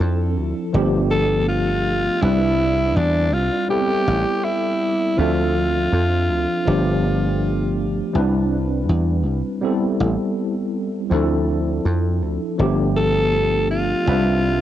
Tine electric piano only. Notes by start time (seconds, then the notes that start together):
Already playing: F3 C4 D4 E4 A4
0.73 F3 A3 B3 D4 G4
2.21 G3 C4 D4 E4 B4
3.69 G3 B3 C4 E4 A4
5.17 F3 C4 D4 A4 E5
6.65 F3 A3 B3 D4 G4
8.13 G3 C4 D4 E4 B4
9.61 G3 B3 C4 E4 A4
11.10 F3 C4 D4 E4 A4
12.58 F3 A3 B3 D4 G4
14.06 G3 C4 D4 B4 E5